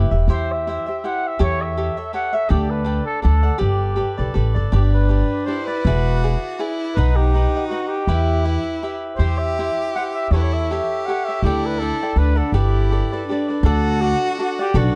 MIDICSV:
0, 0, Header, 1, 5, 480
1, 0, Start_track
1, 0, Key_signature, 1, "major"
1, 0, Tempo, 371058
1, 361, Time_signature, 3, 2, 24, 8
1, 19342, End_track
2, 0, Start_track
2, 0, Title_t, "Cavaquinho"
2, 0, Program_c, 0, 24
2, 0, Note_on_c, 0, 64, 54
2, 0, Note_on_c, 0, 67, 55
2, 0, Note_on_c, 0, 71, 50
2, 132, Note_off_c, 0, 71, 0
2, 141, Note_off_c, 0, 64, 0
2, 144, Note_on_c, 0, 76, 41
2, 145, Note_off_c, 0, 67, 0
2, 148, Note_on_c, 0, 71, 35
2, 160, Note_on_c, 0, 67, 32
2, 359, Note_off_c, 0, 67, 0
2, 363, Note_off_c, 0, 76, 0
2, 365, Note_off_c, 0, 71, 0
2, 372, Note_on_c, 0, 64, 64
2, 374, Note_on_c, 0, 67, 78
2, 384, Note_on_c, 0, 72, 77
2, 390, Note_on_c, 0, 76, 85
2, 852, Note_off_c, 0, 64, 0
2, 858, Note_off_c, 0, 72, 0
2, 861, Note_off_c, 0, 76, 0
2, 864, Note_off_c, 0, 67, 0
2, 869, Note_on_c, 0, 64, 47
2, 869, Note_on_c, 0, 67, 46
2, 874, Note_on_c, 0, 72, 49
2, 894, Note_on_c, 0, 76, 56
2, 1100, Note_off_c, 0, 76, 0
2, 1116, Note_on_c, 0, 76, 42
2, 1120, Note_off_c, 0, 64, 0
2, 1120, Note_off_c, 0, 67, 0
2, 1122, Note_off_c, 0, 72, 0
2, 1136, Note_on_c, 0, 72, 41
2, 1143, Note_on_c, 0, 67, 36
2, 1332, Note_off_c, 0, 76, 0
2, 1335, Note_off_c, 0, 67, 0
2, 1339, Note_off_c, 0, 72, 0
2, 1344, Note_on_c, 0, 64, 42
2, 1351, Note_on_c, 0, 67, 47
2, 1355, Note_on_c, 0, 72, 45
2, 1363, Note_on_c, 0, 76, 50
2, 1786, Note_off_c, 0, 67, 0
2, 1796, Note_off_c, 0, 64, 0
2, 1801, Note_on_c, 0, 67, 72
2, 1803, Note_on_c, 0, 69, 70
2, 1807, Note_off_c, 0, 76, 0
2, 1810, Note_off_c, 0, 72, 0
2, 1815, Note_on_c, 0, 73, 78
2, 1822, Note_on_c, 0, 76, 68
2, 2280, Note_off_c, 0, 67, 0
2, 2288, Note_off_c, 0, 69, 0
2, 2289, Note_off_c, 0, 73, 0
2, 2293, Note_off_c, 0, 76, 0
2, 2293, Note_on_c, 0, 69, 51
2, 2295, Note_on_c, 0, 67, 48
2, 2305, Note_on_c, 0, 73, 47
2, 2309, Note_on_c, 0, 76, 48
2, 2532, Note_off_c, 0, 76, 0
2, 2541, Note_off_c, 0, 73, 0
2, 2545, Note_off_c, 0, 69, 0
2, 2547, Note_on_c, 0, 76, 47
2, 2550, Note_off_c, 0, 67, 0
2, 2557, Note_on_c, 0, 73, 34
2, 2561, Note_on_c, 0, 69, 36
2, 2745, Note_off_c, 0, 69, 0
2, 2751, Note_off_c, 0, 73, 0
2, 2755, Note_on_c, 0, 67, 45
2, 2756, Note_off_c, 0, 76, 0
2, 2761, Note_on_c, 0, 69, 51
2, 2767, Note_on_c, 0, 73, 49
2, 2772, Note_on_c, 0, 76, 49
2, 2994, Note_off_c, 0, 76, 0
2, 3010, Note_on_c, 0, 76, 44
2, 3012, Note_off_c, 0, 73, 0
2, 3017, Note_off_c, 0, 67, 0
2, 3020, Note_off_c, 0, 69, 0
2, 3027, Note_on_c, 0, 73, 37
2, 3034, Note_on_c, 0, 69, 39
2, 3205, Note_off_c, 0, 69, 0
2, 3218, Note_on_c, 0, 62, 62
2, 3221, Note_on_c, 0, 69, 66
2, 3225, Note_off_c, 0, 76, 0
2, 3226, Note_off_c, 0, 73, 0
2, 3230, Note_on_c, 0, 79, 77
2, 3231, Note_on_c, 0, 74, 74
2, 3675, Note_off_c, 0, 62, 0
2, 3678, Note_off_c, 0, 69, 0
2, 3680, Note_on_c, 0, 62, 54
2, 3687, Note_off_c, 0, 79, 0
2, 3692, Note_off_c, 0, 74, 0
2, 3693, Note_on_c, 0, 69, 52
2, 3697, Note_on_c, 0, 74, 62
2, 3703, Note_on_c, 0, 79, 44
2, 4163, Note_off_c, 0, 62, 0
2, 4163, Note_off_c, 0, 69, 0
2, 4169, Note_on_c, 0, 62, 45
2, 4176, Note_off_c, 0, 74, 0
2, 4178, Note_on_c, 0, 69, 44
2, 4181, Note_on_c, 0, 74, 49
2, 4185, Note_off_c, 0, 79, 0
2, 4190, Note_on_c, 0, 78, 52
2, 4417, Note_off_c, 0, 78, 0
2, 4422, Note_off_c, 0, 74, 0
2, 4433, Note_on_c, 0, 78, 44
2, 4434, Note_off_c, 0, 69, 0
2, 4438, Note_on_c, 0, 74, 42
2, 4440, Note_off_c, 0, 62, 0
2, 4450, Note_on_c, 0, 69, 31
2, 4622, Note_off_c, 0, 69, 0
2, 4624, Note_off_c, 0, 74, 0
2, 4632, Note_on_c, 0, 67, 74
2, 4635, Note_off_c, 0, 78, 0
2, 4637, Note_on_c, 0, 69, 69
2, 4638, Note_on_c, 0, 71, 65
2, 4640, Note_on_c, 0, 74, 78
2, 5105, Note_off_c, 0, 67, 0
2, 5115, Note_off_c, 0, 69, 0
2, 5120, Note_on_c, 0, 67, 48
2, 5131, Note_on_c, 0, 69, 46
2, 5132, Note_off_c, 0, 71, 0
2, 5137, Note_off_c, 0, 74, 0
2, 5137, Note_on_c, 0, 71, 51
2, 5142, Note_on_c, 0, 74, 44
2, 5385, Note_off_c, 0, 74, 0
2, 5398, Note_off_c, 0, 67, 0
2, 5401, Note_off_c, 0, 71, 0
2, 5401, Note_on_c, 0, 74, 42
2, 5404, Note_off_c, 0, 69, 0
2, 5417, Note_on_c, 0, 71, 43
2, 5429, Note_on_c, 0, 69, 32
2, 5599, Note_off_c, 0, 69, 0
2, 5614, Note_on_c, 0, 67, 40
2, 5614, Note_on_c, 0, 69, 53
2, 5616, Note_off_c, 0, 71, 0
2, 5617, Note_off_c, 0, 74, 0
2, 5631, Note_on_c, 0, 71, 53
2, 5632, Note_on_c, 0, 74, 50
2, 5864, Note_off_c, 0, 74, 0
2, 5879, Note_on_c, 0, 74, 35
2, 5884, Note_off_c, 0, 71, 0
2, 5890, Note_off_c, 0, 67, 0
2, 5890, Note_off_c, 0, 69, 0
2, 5899, Note_on_c, 0, 71, 35
2, 5903, Note_on_c, 0, 69, 35
2, 6104, Note_off_c, 0, 71, 0
2, 6104, Note_on_c, 0, 62, 67
2, 6109, Note_off_c, 0, 69, 0
2, 6109, Note_off_c, 0, 74, 0
2, 6114, Note_on_c, 0, 67, 59
2, 6120, Note_on_c, 0, 71, 75
2, 6124, Note_on_c, 0, 74, 69
2, 6566, Note_off_c, 0, 62, 0
2, 6573, Note_off_c, 0, 67, 0
2, 6582, Note_on_c, 0, 62, 45
2, 6588, Note_off_c, 0, 74, 0
2, 6588, Note_on_c, 0, 67, 42
2, 6597, Note_off_c, 0, 71, 0
2, 6603, Note_on_c, 0, 71, 48
2, 6604, Note_on_c, 0, 74, 48
2, 7054, Note_off_c, 0, 62, 0
2, 7066, Note_off_c, 0, 67, 0
2, 7070, Note_on_c, 0, 62, 47
2, 7074, Note_off_c, 0, 74, 0
2, 7082, Note_on_c, 0, 67, 47
2, 7089, Note_off_c, 0, 71, 0
2, 7089, Note_on_c, 0, 74, 57
2, 7094, Note_on_c, 0, 71, 51
2, 7325, Note_off_c, 0, 74, 0
2, 7336, Note_off_c, 0, 71, 0
2, 7340, Note_on_c, 0, 74, 41
2, 7341, Note_off_c, 0, 62, 0
2, 7344, Note_off_c, 0, 67, 0
2, 7351, Note_on_c, 0, 71, 28
2, 7360, Note_on_c, 0, 67, 32
2, 7566, Note_off_c, 0, 74, 0
2, 7572, Note_off_c, 0, 71, 0
2, 7576, Note_off_c, 0, 67, 0
2, 7588, Note_on_c, 0, 64, 65
2, 7590, Note_on_c, 0, 68, 70
2, 7593, Note_on_c, 0, 71, 79
2, 7603, Note_on_c, 0, 74, 73
2, 8049, Note_off_c, 0, 64, 0
2, 8052, Note_off_c, 0, 68, 0
2, 8064, Note_off_c, 0, 71, 0
2, 8065, Note_off_c, 0, 74, 0
2, 8065, Note_on_c, 0, 64, 43
2, 8067, Note_on_c, 0, 68, 55
2, 8069, Note_on_c, 0, 71, 46
2, 8080, Note_on_c, 0, 74, 59
2, 8511, Note_off_c, 0, 64, 0
2, 8520, Note_off_c, 0, 68, 0
2, 8523, Note_off_c, 0, 74, 0
2, 8527, Note_on_c, 0, 64, 50
2, 8528, Note_off_c, 0, 71, 0
2, 8533, Note_on_c, 0, 71, 58
2, 8535, Note_on_c, 0, 68, 51
2, 8538, Note_on_c, 0, 74, 52
2, 9007, Note_off_c, 0, 64, 0
2, 9011, Note_off_c, 0, 68, 0
2, 9013, Note_off_c, 0, 74, 0
2, 9017, Note_on_c, 0, 63, 66
2, 9024, Note_off_c, 0, 71, 0
2, 9024, Note_on_c, 0, 71, 75
2, 9032, Note_on_c, 0, 75, 73
2, 9032, Note_on_c, 0, 78, 80
2, 9485, Note_off_c, 0, 63, 0
2, 9494, Note_off_c, 0, 71, 0
2, 9498, Note_off_c, 0, 75, 0
2, 9498, Note_off_c, 0, 78, 0
2, 9500, Note_on_c, 0, 63, 47
2, 9513, Note_on_c, 0, 71, 52
2, 9523, Note_on_c, 0, 75, 44
2, 9523, Note_on_c, 0, 78, 47
2, 9753, Note_off_c, 0, 63, 0
2, 9759, Note_off_c, 0, 71, 0
2, 9760, Note_off_c, 0, 78, 0
2, 9764, Note_off_c, 0, 75, 0
2, 9775, Note_on_c, 0, 78, 37
2, 9788, Note_on_c, 0, 75, 47
2, 9793, Note_on_c, 0, 71, 37
2, 9961, Note_off_c, 0, 71, 0
2, 9970, Note_on_c, 0, 63, 39
2, 9975, Note_off_c, 0, 78, 0
2, 9977, Note_on_c, 0, 71, 54
2, 9979, Note_off_c, 0, 75, 0
2, 9990, Note_on_c, 0, 78, 52
2, 9995, Note_on_c, 0, 75, 51
2, 10444, Note_off_c, 0, 71, 0
2, 10446, Note_off_c, 0, 63, 0
2, 10454, Note_off_c, 0, 75, 0
2, 10456, Note_off_c, 0, 78, 0
2, 10457, Note_on_c, 0, 67, 67
2, 10459, Note_on_c, 0, 64, 68
2, 10459, Note_on_c, 0, 71, 85
2, 10470, Note_on_c, 0, 76, 73
2, 10917, Note_off_c, 0, 64, 0
2, 10921, Note_off_c, 0, 67, 0
2, 10921, Note_off_c, 0, 71, 0
2, 10923, Note_on_c, 0, 64, 41
2, 10926, Note_on_c, 0, 67, 47
2, 10936, Note_on_c, 0, 71, 63
2, 10937, Note_off_c, 0, 76, 0
2, 10942, Note_on_c, 0, 76, 50
2, 11413, Note_off_c, 0, 64, 0
2, 11414, Note_off_c, 0, 71, 0
2, 11418, Note_off_c, 0, 67, 0
2, 11418, Note_on_c, 0, 64, 45
2, 11424, Note_on_c, 0, 67, 46
2, 11432, Note_on_c, 0, 71, 47
2, 11434, Note_off_c, 0, 76, 0
2, 11439, Note_on_c, 0, 76, 52
2, 11889, Note_off_c, 0, 64, 0
2, 11890, Note_off_c, 0, 71, 0
2, 11894, Note_on_c, 0, 64, 62
2, 11896, Note_off_c, 0, 67, 0
2, 11896, Note_on_c, 0, 72, 68
2, 11901, Note_on_c, 0, 67, 67
2, 11905, Note_off_c, 0, 76, 0
2, 11910, Note_on_c, 0, 76, 71
2, 12380, Note_off_c, 0, 64, 0
2, 12381, Note_off_c, 0, 72, 0
2, 12388, Note_off_c, 0, 76, 0
2, 12399, Note_off_c, 0, 67, 0
2, 12404, Note_on_c, 0, 67, 42
2, 12405, Note_on_c, 0, 64, 54
2, 12418, Note_on_c, 0, 72, 48
2, 12420, Note_on_c, 0, 76, 42
2, 12865, Note_off_c, 0, 64, 0
2, 12880, Note_on_c, 0, 64, 40
2, 12883, Note_off_c, 0, 67, 0
2, 12883, Note_off_c, 0, 72, 0
2, 12884, Note_off_c, 0, 76, 0
2, 12888, Note_on_c, 0, 67, 44
2, 12896, Note_on_c, 0, 72, 38
2, 12901, Note_on_c, 0, 76, 50
2, 13341, Note_off_c, 0, 67, 0
2, 13351, Note_off_c, 0, 64, 0
2, 13357, Note_on_c, 0, 67, 65
2, 13361, Note_off_c, 0, 72, 0
2, 13364, Note_off_c, 0, 76, 0
2, 13371, Note_on_c, 0, 69, 72
2, 13379, Note_on_c, 0, 73, 61
2, 13382, Note_on_c, 0, 76, 68
2, 13831, Note_off_c, 0, 67, 0
2, 13842, Note_off_c, 0, 73, 0
2, 13844, Note_off_c, 0, 76, 0
2, 13846, Note_off_c, 0, 69, 0
2, 13848, Note_on_c, 0, 67, 37
2, 13851, Note_on_c, 0, 69, 53
2, 13860, Note_on_c, 0, 73, 51
2, 13874, Note_on_c, 0, 76, 51
2, 14316, Note_off_c, 0, 67, 0
2, 14322, Note_off_c, 0, 73, 0
2, 14329, Note_off_c, 0, 76, 0
2, 14335, Note_on_c, 0, 67, 47
2, 14339, Note_off_c, 0, 69, 0
2, 14345, Note_on_c, 0, 69, 49
2, 14351, Note_on_c, 0, 73, 56
2, 14363, Note_on_c, 0, 76, 47
2, 14579, Note_off_c, 0, 67, 0
2, 14584, Note_off_c, 0, 69, 0
2, 14584, Note_off_c, 0, 76, 0
2, 14587, Note_off_c, 0, 73, 0
2, 14600, Note_on_c, 0, 76, 36
2, 14605, Note_on_c, 0, 73, 38
2, 14613, Note_on_c, 0, 69, 27
2, 14799, Note_off_c, 0, 76, 0
2, 14802, Note_off_c, 0, 73, 0
2, 14803, Note_off_c, 0, 69, 0
2, 14813, Note_on_c, 0, 62, 54
2, 14819, Note_on_c, 0, 69, 61
2, 14827, Note_on_c, 0, 74, 67
2, 14830, Note_on_c, 0, 79, 71
2, 15272, Note_off_c, 0, 62, 0
2, 15277, Note_on_c, 0, 62, 48
2, 15279, Note_off_c, 0, 79, 0
2, 15281, Note_off_c, 0, 69, 0
2, 15286, Note_on_c, 0, 69, 45
2, 15296, Note_on_c, 0, 79, 51
2, 15297, Note_off_c, 0, 74, 0
2, 15302, Note_on_c, 0, 74, 49
2, 15522, Note_off_c, 0, 62, 0
2, 15526, Note_off_c, 0, 69, 0
2, 15531, Note_off_c, 0, 79, 0
2, 15535, Note_off_c, 0, 74, 0
2, 15557, Note_on_c, 0, 79, 44
2, 15561, Note_on_c, 0, 74, 42
2, 15570, Note_on_c, 0, 69, 36
2, 15730, Note_off_c, 0, 69, 0
2, 15734, Note_off_c, 0, 74, 0
2, 15741, Note_on_c, 0, 62, 44
2, 15746, Note_on_c, 0, 69, 47
2, 15750, Note_off_c, 0, 79, 0
2, 15750, Note_on_c, 0, 74, 45
2, 15757, Note_on_c, 0, 78, 51
2, 15965, Note_off_c, 0, 78, 0
2, 15974, Note_off_c, 0, 74, 0
2, 15980, Note_on_c, 0, 78, 44
2, 15984, Note_off_c, 0, 69, 0
2, 15989, Note_on_c, 0, 74, 37
2, 15991, Note_off_c, 0, 62, 0
2, 16004, Note_on_c, 0, 69, 33
2, 16200, Note_off_c, 0, 78, 0
2, 16204, Note_off_c, 0, 74, 0
2, 16207, Note_off_c, 0, 69, 0
2, 16220, Note_on_c, 0, 67, 71
2, 16222, Note_on_c, 0, 69, 67
2, 16225, Note_on_c, 0, 71, 72
2, 16225, Note_on_c, 0, 74, 65
2, 16686, Note_off_c, 0, 67, 0
2, 16692, Note_off_c, 0, 71, 0
2, 16702, Note_on_c, 0, 67, 44
2, 16711, Note_off_c, 0, 69, 0
2, 16716, Note_on_c, 0, 69, 43
2, 16716, Note_on_c, 0, 71, 45
2, 16720, Note_off_c, 0, 74, 0
2, 16725, Note_on_c, 0, 74, 52
2, 16952, Note_off_c, 0, 67, 0
2, 16959, Note_off_c, 0, 69, 0
2, 16959, Note_off_c, 0, 71, 0
2, 16960, Note_off_c, 0, 74, 0
2, 16976, Note_on_c, 0, 74, 43
2, 16985, Note_on_c, 0, 71, 47
2, 16992, Note_on_c, 0, 69, 39
2, 17180, Note_off_c, 0, 74, 0
2, 17185, Note_off_c, 0, 71, 0
2, 17188, Note_off_c, 0, 69, 0
2, 17195, Note_on_c, 0, 67, 37
2, 17209, Note_on_c, 0, 69, 47
2, 17216, Note_on_c, 0, 71, 49
2, 17228, Note_on_c, 0, 74, 61
2, 17426, Note_off_c, 0, 74, 0
2, 17442, Note_off_c, 0, 67, 0
2, 17442, Note_on_c, 0, 74, 39
2, 17446, Note_off_c, 0, 69, 0
2, 17447, Note_off_c, 0, 71, 0
2, 17462, Note_on_c, 0, 69, 34
2, 17462, Note_on_c, 0, 71, 39
2, 17647, Note_off_c, 0, 69, 0
2, 17651, Note_on_c, 0, 62, 77
2, 17655, Note_off_c, 0, 74, 0
2, 17663, Note_on_c, 0, 69, 75
2, 17664, Note_off_c, 0, 71, 0
2, 17672, Note_on_c, 0, 74, 90
2, 17672, Note_on_c, 0, 78, 92
2, 18118, Note_off_c, 0, 62, 0
2, 18130, Note_off_c, 0, 74, 0
2, 18134, Note_on_c, 0, 62, 55
2, 18140, Note_off_c, 0, 78, 0
2, 18142, Note_off_c, 0, 69, 0
2, 18146, Note_on_c, 0, 74, 54
2, 18147, Note_on_c, 0, 69, 48
2, 18167, Note_on_c, 0, 78, 54
2, 18597, Note_off_c, 0, 62, 0
2, 18607, Note_off_c, 0, 74, 0
2, 18612, Note_on_c, 0, 62, 45
2, 18616, Note_off_c, 0, 69, 0
2, 18617, Note_off_c, 0, 78, 0
2, 18621, Note_on_c, 0, 69, 51
2, 18622, Note_on_c, 0, 74, 57
2, 18632, Note_on_c, 0, 78, 60
2, 18860, Note_off_c, 0, 74, 0
2, 18861, Note_off_c, 0, 78, 0
2, 18868, Note_off_c, 0, 62, 0
2, 18872, Note_off_c, 0, 69, 0
2, 18876, Note_on_c, 0, 74, 45
2, 18876, Note_on_c, 0, 78, 46
2, 18901, Note_on_c, 0, 69, 37
2, 19065, Note_off_c, 0, 69, 0
2, 19080, Note_on_c, 0, 69, 88
2, 19083, Note_off_c, 0, 74, 0
2, 19083, Note_on_c, 0, 66, 79
2, 19088, Note_off_c, 0, 78, 0
2, 19092, Note_on_c, 0, 71, 86
2, 19098, Note_on_c, 0, 74, 83
2, 19342, Note_off_c, 0, 66, 0
2, 19342, Note_off_c, 0, 69, 0
2, 19342, Note_off_c, 0, 71, 0
2, 19342, Note_off_c, 0, 74, 0
2, 19342, End_track
3, 0, Start_track
3, 0, Title_t, "Trumpet"
3, 0, Program_c, 1, 56
3, 402, Note_on_c, 1, 72, 81
3, 670, Note_on_c, 1, 76, 68
3, 689, Note_off_c, 1, 72, 0
3, 1361, Note_on_c, 1, 78, 82
3, 1380, Note_off_c, 1, 76, 0
3, 1649, Note_on_c, 1, 76, 75
3, 1668, Note_off_c, 1, 78, 0
3, 1829, Note_off_c, 1, 76, 0
3, 1837, Note_on_c, 1, 73, 85
3, 2093, Note_on_c, 1, 76, 70
3, 2112, Note_off_c, 1, 73, 0
3, 2760, Note_off_c, 1, 76, 0
3, 2768, Note_on_c, 1, 78, 86
3, 3031, Note_on_c, 1, 76, 81
3, 3051, Note_off_c, 1, 78, 0
3, 3237, Note_on_c, 1, 67, 77
3, 3257, Note_off_c, 1, 76, 0
3, 3498, Note_on_c, 1, 71, 64
3, 3517, Note_off_c, 1, 67, 0
3, 3948, Note_off_c, 1, 71, 0
3, 3956, Note_on_c, 1, 69, 88
3, 4163, Note_off_c, 1, 69, 0
3, 4170, Note_on_c, 1, 69, 79
3, 4645, Note_on_c, 1, 67, 75
3, 4664, Note_off_c, 1, 69, 0
3, 5624, Note_off_c, 1, 67, 0
3, 6134, Note_on_c, 1, 67, 67
3, 6250, Note_off_c, 1, 67, 0
3, 6375, Note_on_c, 1, 71, 68
3, 7054, Note_on_c, 1, 72, 88
3, 7074, Note_off_c, 1, 71, 0
3, 7314, Note_on_c, 1, 71, 78
3, 7333, Note_off_c, 1, 72, 0
3, 8293, Note_off_c, 1, 71, 0
3, 8982, Note_on_c, 1, 71, 81
3, 9263, Note_on_c, 1, 67, 75
3, 9282, Note_off_c, 1, 71, 0
3, 9916, Note_off_c, 1, 67, 0
3, 9924, Note_on_c, 1, 66, 69
3, 10193, Note_on_c, 1, 67, 78
3, 10212, Note_off_c, 1, 66, 0
3, 11171, Note_off_c, 1, 67, 0
3, 11862, Note_on_c, 1, 72, 78
3, 12138, Note_on_c, 1, 76, 62
3, 12157, Note_off_c, 1, 72, 0
3, 12854, Note_off_c, 1, 76, 0
3, 12865, Note_on_c, 1, 78, 86
3, 12983, Note_off_c, 1, 78, 0
3, 13120, Note_on_c, 1, 76, 85
3, 13346, Note_on_c, 1, 73, 78
3, 13366, Note_off_c, 1, 76, 0
3, 13399, Note_on_c, 1, 71, 68
3, 13419, Note_off_c, 1, 73, 0
3, 13479, Note_on_c, 1, 73, 72
3, 13498, Note_off_c, 1, 71, 0
3, 13630, Note_on_c, 1, 76, 73
3, 13649, Note_off_c, 1, 73, 0
3, 14306, Note_on_c, 1, 78, 82
3, 14326, Note_off_c, 1, 76, 0
3, 14565, Note_on_c, 1, 76, 85
3, 14585, Note_off_c, 1, 78, 0
3, 14779, Note_off_c, 1, 76, 0
3, 14787, Note_on_c, 1, 67, 78
3, 15081, Note_on_c, 1, 71, 70
3, 15100, Note_off_c, 1, 67, 0
3, 15252, Note_on_c, 1, 69, 73
3, 15272, Note_off_c, 1, 71, 0
3, 15760, Note_on_c, 1, 71, 84
3, 15780, Note_off_c, 1, 69, 0
3, 15999, Note_on_c, 1, 69, 75
3, 16018, Note_off_c, 1, 71, 0
3, 16204, Note_off_c, 1, 69, 0
3, 16212, Note_on_c, 1, 67, 69
3, 17116, Note_off_c, 1, 67, 0
3, 17654, Note_on_c, 1, 69, 83
3, 18123, Note_on_c, 1, 66, 73
3, 18143, Note_off_c, 1, 69, 0
3, 18604, Note_off_c, 1, 66, 0
3, 18627, Note_on_c, 1, 66, 79
3, 18897, Note_on_c, 1, 67, 91
3, 18917, Note_off_c, 1, 66, 0
3, 19111, Note_on_c, 1, 66, 81
3, 19130, Note_off_c, 1, 67, 0
3, 19342, Note_off_c, 1, 66, 0
3, 19342, End_track
4, 0, Start_track
4, 0, Title_t, "Violin"
4, 0, Program_c, 2, 40
4, 6117, Note_on_c, 2, 62, 64
4, 7110, Note_on_c, 2, 64, 64
4, 7129, Note_off_c, 2, 62, 0
4, 7587, Note_on_c, 2, 66, 73
4, 7607, Note_off_c, 2, 64, 0
4, 8548, Note_on_c, 2, 64, 76
4, 8567, Note_off_c, 2, 66, 0
4, 9012, Note_on_c, 2, 63, 70
4, 9032, Note_off_c, 2, 64, 0
4, 10444, Note_off_c, 2, 63, 0
4, 10454, Note_on_c, 2, 64, 71
4, 11626, Note_off_c, 2, 64, 0
4, 11880, Note_on_c, 2, 67, 82
4, 13287, Note_off_c, 2, 67, 0
4, 13364, Note_on_c, 2, 64, 88
4, 13861, Note_on_c, 2, 67, 73
4, 13880, Note_off_c, 2, 64, 0
4, 14802, Note_on_c, 2, 64, 79
4, 14821, Note_off_c, 2, 67, 0
4, 15737, Note_off_c, 2, 64, 0
4, 15761, Note_on_c, 2, 62, 59
4, 16220, Note_on_c, 2, 64, 69
4, 16240, Note_off_c, 2, 62, 0
4, 17156, Note_off_c, 2, 64, 0
4, 17164, Note_on_c, 2, 62, 62
4, 17613, Note_off_c, 2, 62, 0
4, 17678, Note_on_c, 2, 66, 99
4, 19046, Note_off_c, 2, 66, 0
4, 19117, Note_on_c, 2, 62, 98
4, 19342, Note_off_c, 2, 62, 0
4, 19342, End_track
5, 0, Start_track
5, 0, Title_t, "Upright bass"
5, 0, Program_c, 3, 32
5, 145, Note_on_c, 3, 28, 61
5, 342, Note_off_c, 3, 28, 0
5, 358, Note_on_c, 3, 40, 80
5, 988, Note_off_c, 3, 40, 0
5, 1809, Note_on_c, 3, 40, 88
5, 2430, Note_off_c, 3, 40, 0
5, 3240, Note_on_c, 3, 38, 91
5, 3859, Note_off_c, 3, 38, 0
5, 4199, Note_on_c, 3, 38, 94
5, 4508, Note_off_c, 3, 38, 0
5, 4668, Note_on_c, 3, 31, 86
5, 5153, Note_off_c, 3, 31, 0
5, 5415, Note_on_c, 3, 35, 61
5, 5615, Note_off_c, 3, 35, 0
5, 5634, Note_on_c, 3, 33, 66
5, 5873, Note_off_c, 3, 33, 0
5, 5897, Note_on_c, 3, 31, 61
5, 6099, Note_off_c, 3, 31, 0
5, 6113, Note_on_c, 3, 31, 70
5, 6744, Note_off_c, 3, 31, 0
5, 7565, Note_on_c, 3, 28, 91
5, 8191, Note_off_c, 3, 28, 0
5, 9014, Note_on_c, 3, 35, 78
5, 9633, Note_off_c, 3, 35, 0
5, 10444, Note_on_c, 3, 40, 78
5, 11071, Note_off_c, 3, 40, 0
5, 11886, Note_on_c, 3, 40, 67
5, 12519, Note_off_c, 3, 40, 0
5, 13334, Note_on_c, 3, 40, 80
5, 13961, Note_off_c, 3, 40, 0
5, 14779, Note_on_c, 3, 38, 75
5, 15394, Note_off_c, 3, 38, 0
5, 15730, Note_on_c, 3, 38, 83
5, 16037, Note_off_c, 3, 38, 0
5, 16200, Note_on_c, 3, 31, 74
5, 16825, Note_off_c, 3, 31, 0
5, 17632, Note_on_c, 3, 38, 100
5, 18260, Note_off_c, 3, 38, 0
5, 19071, Note_on_c, 3, 35, 94
5, 19243, Note_off_c, 3, 35, 0
5, 19342, End_track
0, 0, End_of_file